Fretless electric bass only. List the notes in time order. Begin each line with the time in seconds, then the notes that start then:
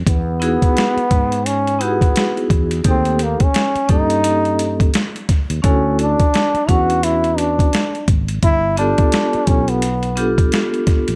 0.07 E2
0.97 muted fretless electric bass stroke
1.11 G#2
2.50 E2
2.85 D#2
3.75 muted fretless electric bass stroke
3.90 G2
5.50 D#2
5.64 D2
6.54 muted fretless electric bass stroke
6.68 E2
8.08 G#1
8.43 G1
9.35 muted fretless electric bass stroke
9.47 B1
11.09 A#1